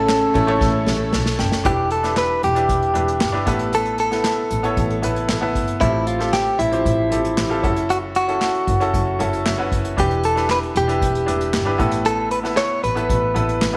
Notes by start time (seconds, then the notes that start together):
Already playing: A1 A2 C#3 A3 C#4 E4 A4 C#5
0.09 snare, clap, ride
0.34 A1 A3 C#4 E4 A4 C#5, kick, ride
0.47 A3 C#4 E4 A4 C#5, ride
0.61 A1, kick, snare
0.86 A1 A3 C#4 E4 A4, snare
1.12 B1 A3 C#4 E4 A4 A5, snare
1.26 snare
1.39 F#1 A3 C#4 E4 A4 G5, snare
1.52 snare
1.64 E1 E3 D4 E4 G4 B4, kick, closed hi-hat
1.90 A4, closed hi-hat
2.03 D4 E4 G4 B4, snare, closed hi-hat
2.16 B4, snare, clap
2.43 E1 G4, closed hi-hat
2.55 D4 E4 G4 B4, closed hi-hat
2.69 E1, kick, closed hi-hat
2.82 closed hi-hat
2.94 E1 D4 E4 G4 B4, closed hi-hat
3.08 closed hi-hat
3.21 G1, snare, clap
3.32 D4 E4 G4 B4
3.46 A1 A2 B3 E4 A4 B4, kick, closed hi-hat
3.59 closed hi-hat
3.73 A4, closed hi-hat
3.85 closed hi-hat
3.98 A4, closed hi-hat
4.11 B3 E4 A4 B4, snare, closed hi-hat
4.24 snare, clap
4.51 A1, closed hi-hat
4.63 B3 E4 A4 C#5, closed hi-hat
4.77 A1, kick, closed hi-hat
4.90 closed hi-hat
5.02 A1 B3 E4 A4 B4, closed hi-hat
5.16 closed hi-hat
5.29 A1, snare, clap
5.41 B3 E4 A4 B4
5.55 G1, kick, closed hi-hat
5.68 closed hi-hat
5.81 A1 A2 C4 E4 F4 G4 A4, kick, closed hi-hat
6.07 F4, closed hi-hat
6.19 C4 F4 G4 A4, snare, closed hi-hat
6.33 G4, snare, clap
6.47 closed hi-hat
6.59 A1 E4, closed hi-hat
6.72 F3 C4 G4 C5, closed hi-hat
6.85 A1, kick, closed hi-hat
7.10 A1 F3 C4 G4 A4, closed hi-hat
7.25 closed hi-hat
7.37 A1, snare, clap
7.49 C4 F4 G4 A4, closed hi-hat
7.62 F#1 C#4 E4 F#4 A4, kick, closed hi-hat
7.76 closed hi-hat
7.90 F#4, closed hi-hat
8.15 F#4, closed hi-hat
8.28 C#4 E4 F#4 A4, closed hi-hat
8.41 snare, clap
8.55 closed hi-hat
8.67 F#1, kick, closed hi-hat
8.80 C#4 E4 F#4 A4, closed hi-hat
8.94 F#1, kick, closed hi-hat
9.19 F#1 C#4 E4 F#4 A4, closed hi-hat
9.33 closed hi-hat
9.46 F#1 E5, snare, clap
9.58 C#4 E4 F#4 B4
9.72 F#1, kick, closed hi-hat
9.85 closed hi-hat
9.97 E1 E3 D4 E4 G4 B4, kick, closed hi-hat
10.11 closed hi-hat
10.23 A4, closed hi-hat
10.36 D4 E4 G4 B4, snare, closed hi-hat
10.49 B4, snare, clap
10.63 closed hi-hat
10.75 E1 G4, closed hi-hat
10.88 D4 E4 G4 B4, closed hi-hat
11.02 E1, kick, closed hi-hat
11.15 closed hi-hat
11.26 E1 D4 E4 G4 B4, closed hi-hat
11.41 closed hi-hat
11.53 G1, snare, clap
11.65 D4 E4 G4 B4
11.78 A1 A2 B3 E4 A4 B4, kick, closed hi-hat
11.91 closed hi-hat
12.05 A4, closed hi-hat
12.31 B4, closed hi-hat
12.43 B3 E4 A4 B4, snare, closed hi-hat
12.57 C#5, snare, clap
12.83 A1 B4, closed hi-hat
12.95 B3 E4 A4 B4, closed hi-hat
13.09 A1, kick, closed hi-hat
13.34 A1 B3 E4 A4 B4, closed hi-hat
13.49 closed hi-hat
13.61 A1, snare, clap
13.73 B3 E4